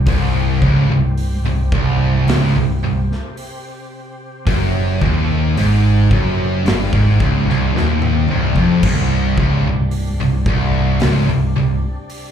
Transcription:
0.00 8.79 C3 medium
0.00 8.79 G4 medium
0.06 0.58 C1 loud
0.06 0.60 C2 medium
0.06 8.79 C4 medium
0.06 kick loud
0.06 open hi-hat medium
0.62 0.88 C#1 loud
0.62 0.89 C#2 loud
0.62 kick loud
0.90 1.41 C1 medium
0.90 1.34 C2 medium
1.17 open hi-hat medium
1.44 1.70 C1 medium
1.44 1.71 C2 medium
1.72 2.24 C1 loud
1.72 2.26 C2 medium
1.72 kick loud
2.28 2.53 C#1 loud
2.28 2.53 C#2 loud
2.28 snare loud
2.28 open hi-hat medium
2.56 2.81 C1 medium
2.56 2.82 C2 medium
2.83 3.09 C1 medium
2.83 3.10 C2 medium
3.12 snare soft
3.37 open hi-hat medium
4.46 4.97 F#1 loud
4.46 5.00 F#2 medium
4.46 kick loud
4.46 open hi-hat medium
5.01 5.52 D#1 loud
5.01 5.54 D#2 medium
5.01 kick medium
5.57 6.08 G#1 loud
5.57 6.10 G#2 loud
5.57 open hi-hat medium
6.11 6.62 F#1 loud
6.11 6.64 F#2 medium
6.11 kick loud
6.65 6.92 G1 loud
6.65 6.91 G2 loud
6.65 snare loud
6.65 open hi-hat medium
6.93 7.18 G#1 loud
6.93 7.18 G#2 medium
6.93 kick loud
7.20 7.46 C#1 medium
7.20 7.46 C#2 loud
7.20 kick loud
7.46 7.73 C1 loud
7.46 7.72 C2 loud
7.46 snare soft
7.75 8.25 D#1 medium
7.75 8.27 D#2 loud
7.75 snare medium
8.02 mid tom medium
8.28 8.54 C1 medium
8.28 8.54 C2 loud
8.28 mid tom medium
8.56 8.81 F1 loud
8.56 8.83 F2 medium
8.56 kick medium
8.83 9.34 C1 loud
8.83 9.37 C2 loud
8.83 12.31 C3 medium
8.83 12.31 G3 medium
8.83 12.31 D4 medium
8.83 kick loud
8.83 crash loud
9.38 9.63 C#1 medium
9.38 9.64 C#2 loud
9.38 kick loud
9.65 10.16 C1 medium
9.65 10.09 C2 medium
9.91 open hi-hat medium
10.20 10.46 C1 medium
10.20 10.46 C2 medium
10.46 10.97 C1 loud
10.46 11.00 C2 medium
10.46 kick loud
11.00 11.27 C#1 medium
11.00 11.27 C#2 loud
11.00 snare loud
11.00 open hi-hat medium
11.29 11.54 C1 medium
11.29 11.55 C2 medium
11.55 11.81 C1 medium
11.55 11.83 C2 medium
12.10 open hi-hat medium

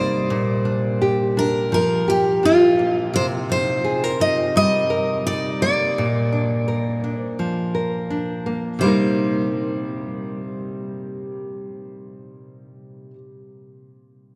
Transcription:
0.00 0.30 C3 medium
0.00 1.72 G3 medium
0.00 2.79 A#3 medium
0.00 0.38 D#4 medium
0.00 1.01 A#4 medium
0.00 0.98 C5 medium
0.30 3.14 A#2 medium
0.65 1.36 D4 medium
1.02 2.07 G4 medium
1.37 2.42 D4 medium
1.37 1.73 A#4 medium
1.72 3.21 F3 medium
1.72 2.09 A#4 medium
2.08 3.84 G4 medium
2.08 2.45 G4 medium
2.43 3.22 D4 medium
2.43 2.95 F4 medium
2.79 3.87 A#3 medium
3.14 5.97 C3 medium
3.14 3.25 C5 medium
3.49 4.19 D#4 medium
3.49 4.21 C5 medium
3.84 4.04 G#4 medium
4.04 4.89 A#4 soft
4.20 5.25 D#4 soft
4.20 4.56 D#5 medium
4.56 6.05 G3 medium
4.56 5.26 D#5 medium
4.90 6.67 A#4 medium
5.27 6.05 D#4 medium
5.27 5.61 D5 medium
5.62 8.46 A#3 medium
5.62 7.18 D5 medium
5.98 8.81 A#2 medium
6.32 7.03 D4 soft
6.68 7.74 A#4 medium
7.04 8.09 D4 soft
7.18 8.06 C5 medium
7.39 8.81 F3 medium
7.75 8.87 A#4 soft
8.10 8.86 D4 soft
8.46 8.83 A#3 soft
8.79 13.13 C3 medium
8.79 13.15 G3 medium
8.79 13.10 C5 medium
8.84 13.16 A#3 medium
8.84 13.17 D#4 medium
8.84 13.18 A#4 medium

